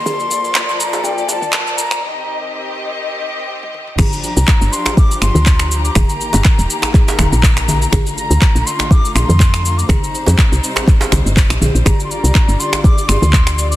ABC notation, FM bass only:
X:1
M:4/4
L:1/16
Q:"Swing 16ths" 1/4=122
K:Gm
V:1 name="FM bass" clef=bass
z16 | z16 | G,,, z2 C,, z G,,, z4 G,,, D,,4- D,, | E,,, z2 G,,, z E,,, z4 E,,, B,,,4- B,,, |
B,,, z2 D,, z B,,, z4 B,,, F,,4- F,, | C,, z2 F,, z C,, z4 C,, G,,,2 B,,, B,,, B,,, | G,,, z2 C,, z G,,, z4 G,,, D,,4- D,, |]